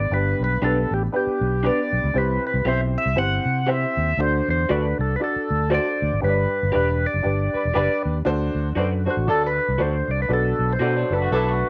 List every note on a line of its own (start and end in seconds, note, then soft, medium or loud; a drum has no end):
0.00 0.14 D5 medium
0.10 0.33 G1 medium
0.10 0.88 G2 medium
0.10 0.52 B3 medium
0.10 0.52 D4 medium
0.10 0.52 G4 medium
0.10 0.53 B4 medium
0.10 0.43 B4 medium
0.40 0.56 B1 medium
0.44 0.64 B4 medium
0.62 0.84 B1 medium
0.62 1.03 B3 medium
0.62 0.77 D4 medium
0.62 1.03 D4 medium
0.62 1.03 G4 medium
0.62 0.77 G4 medium
0.62 0.94 A4 medium
0.62 1.03 B4 medium
0.62 0.78 B4 medium
0.91 1.07 A1 medium
0.91 1.03 G4 medium
1.12 1.54 B3 medium
1.12 1.54 D4 medium
1.12 1.54 G4 medium
1.12 1.67 G4 medium
1.12 1.54 B4 medium
1.27 muted fingered electric bass stroke soft
1.41 1.69 B1 medium
1.63 2.05 B3 medium
1.63 1.79 D4 medium
1.63 2.05 D4 medium
1.63 1.79 G4 medium
1.63 2.05 G4 medium
1.63 1.80 B4 medium
1.63 2.05 B4 medium
1.63 2.18 D5 medium
1.93 2.01 B1 medium
2.04 2.12 C#2 medium
2.14 2.37 C2 loud
2.14 2.92 C3 medium
2.14 2.55 C4 medium
2.14 2.56 E4 medium
2.14 2.56 G4 medium
2.14 2.56 C5 medium
2.18 2.46 B4 medium
2.47 2.66 B4 medium
2.54 2.62 C2 medium
2.65 2.96 B1 loud
2.65 3.07 C4 medium
2.65 3.07 E4 medium
2.65 2.81 G4 medium
2.65 3.07 G4 medium
2.65 2.81 C5 medium
2.65 3.07 C5 medium
2.65 2.81 C5 medium
2.65 2.81 E5 medium
2.98 3.19 E5 medium
3.06 3.14 C2 medium
3.15 3.38 G1 medium
3.15 3.57 C4 medium
3.15 3.57 E4 medium
3.15 3.58 G4 medium
3.15 3.58 C5 medium
3.15 3.70 F#5 loud
3.46 3.84 C3 medium
3.66 4.08 C4 medium
3.66 4.09 E4 medium
3.66 3.82 G4 medium
3.66 4.09 G4 medium
3.66 3.83 C5 medium
3.66 4.09 C5 medium
3.66 3.83 E5 medium
3.66 4.21 E5 loud
3.97 4.13 D#2 medium
4.17 4.40 D2 medium
4.17 4.96 D3 medium
4.17 4.60 D4 medium
4.17 4.60 F#4 medium
4.17 4.60 A4 medium
4.17 4.49 C5 loud
4.17 4.60 D5 medium
4.48 4.64 E2 medium
4.48 4.71 C5 medium
4.69 4.92 D2 medium
4.69 5.10 D4 medium
4.69 4.84 F#4 medium
4.69 5.11 F#4 medium
4.69 4.85 A4 medium
4.69 5.11 A4 medium
4.69 4.98 B4 medium
4.69 5.11 D5 medium
4.69 4.85 D5 medium
4.99 5.15 C2 medium
4.99 5.16 A4 medium
5.16 5.61 D4 medium
5.16 5.21 B4 medium
5.21 5.62 F#4 medium
5.21 5.62 A4 medium
5.21 5.70 A4 medium
5.21 5.62 D5 medium
5.36 muted fingered electric bass stroke soft
5.51 5.78 D2 medium
5.70 6.12 D4 medium
5.70 5.86 F#4 medium
5.70 6.12 F#4 medium
5.70 5.87 A4 medium
5.70 6.12 A4 medium
5.70 6.12 C5 medium
5.70 5.87 D5 medium
5.74 6.20 D5 loud
6.02 6.10 D2 medium
6.13 6.20 G#1 medium
6.21 6.45 G1 medium
6.21 6.99 G2 medium
6.21 6.63 D4 medium
6.21 6.63 G4 medium
6.21 6.63 B4 medium
6.21 7.07 B4 medium
6.21 6.30 C#5 medium
6.29 6.67 D5 medium
6.63 6.71 G1 medium
6.72 7.05 E1 medium
6.72 7.14 D4 medium
6.72 6.88 G4 medium
6.72 7.14 G4 medium
6.72 6.88 B4 medium
6.72 7.14 B4 medium
6.72 6.89 D5 medium
6.72 7.14 D5 medium
7.06 8.03 D5 medium
7.14 7.22 F#1 medium
7.23 7.47 G1 medium
7.23 7.64 D4 medium
7.23 7.65 G4 medium
7.23 7.65 B4 medium
7.23 7.65 D5 medium
7.54 7.63 G3 medium
7.54 7.63 D4 medium
7.54 7.63 B4 medium
7.54 muted fingered electric bass stroke soft
7.65 7.73 E1 medium
7.74 7.87 F#1 medium
7.74 8.13 G3 medium
7.74 8.16 D4 medium
7.74 8.13 D4 medium
7.74 7.90 G4 medium
7.74 8.16 G4 medium
7.74 7.90 B4 medium
7.74 8.13 B4 loud
7.74 8.16 B4 medium
7.74 7.91 D5 medium
7.74 8.17 D5 loud
8.05 8.21 D#2 medium
8.25 8.48 D2 loud
8.25 9.03 D3 medium
8.25 8.67 D4 loud
8.25 8.67 F#4 loud
8.25 8.67 A4 medium
8.25 8.67 C5 loud
8.55 8.71 D2 medium
8.75 9.07 F#2 medium
8.75 8.89 A3 medium
8.75 8.99 D4 medium
8.75 8.92 F#4 medium
8.75 8.89 F#4 medium
8.75 9.00 F#4 medium
8.75 9.00 A4 medium
8.75 9.00 B4 medium
8.75 8.89 C5 medium
8.75 8.92 C5 medium
8.75 8.93 D5 medium
9.05 9.15 A3 medium
9.05 9.23 D4 medium
9.05 9.15 F#4 medium
9.05 9.23 F#4 medium
9.05 9.23 A4 medium
9.05 9.15 C5 medium
9.05 9.23 C5 medium
9.10 9.29 F#4 medium
9.17 9.28 A1 medium
9.27 9.58 D2 medium
9.27 9.47 F#3 medium
9.27 9.69 D4 medium
9.27 9.47 D4 medium
9.27 9.69 F#4 medium
9.27 9.47 A4 loud
9.27 9.69 A4 medium
9.27 9.43 A4 medium
9.27 9.69 D5 medium
9.47 9.82 B4 loud
9.68 9.77 C2 medium
9.78 10.01 D2 medium
9.78 10.20 D4 medium
9.78 9.94 F#4 medium
9.78 10.20 F#4 medium
9.78 10.20 A4 medium
9.78 9.95 C5 medium
9.78 10.21 C5 medium
9.78 10.11 C5 medium
9.78 9.95 D5 medium
10.08 10.25 C2 medium
10.08 10.21 D5 medium
10.22 10.32 B4 medium
10.29 10.52 B1 medium
10.29 11.07 B2 medium
10.29 10.70 D4 medium
10.29 10.71 F#4 medium
10.29 10.71 A4 medium
10.29 10.71 B4 medium
10.34 10.73 A4 medium
10.59 10.75 B1 medium
10.73 11.13 C5 loud
10.79 11.03 B2 medium
10.79 10.96 D3 medium
10.79 10.93 F#3 medium
10.79 10.96 B3 medium
10.79 10.93 D4 medium
10.79 11.04 D4 medium
10.79 10.95 F#4 medium
10.79 11.04 F#4 medium
10.79 10.93 A4 medium
10.79 10.96 A4 medium
10.79 11.04 A4 medium
10.79 10.96 D5 medium
10.79 11.04 D5 medium
10.97 11.21 F#3 medium
10.97 11.21 D4 medium
11.10 11.27 F#1 medium
11.10 11.19 F#3 medium
11.10 11.27 D4 medium
11.10 11.20 D4 medium
11.10 11.27 F#4 medium
11.10 11.20 A4 medium
11.10 11.28 A4 medium
11.10 11.28 B4 medium
11.10 11.69 B4 medium
11.22 11.32 A3 medium
11.22 11.32 F#4 medium
11.31 11.62 B1 medium
11.31 11.51 F#3 medium
11.31 11.69 D4 medium
11.31 11.51 D4 loud
11.31 11.47 E4 medium
11.31 11.69 F#4 medium
11.31 11.51 A4 loud
11.31 11.69 A4 medium
11.31 11.69 B4 medium
11.48 11.69 A3 medium
11.48 11.69 F#4 medium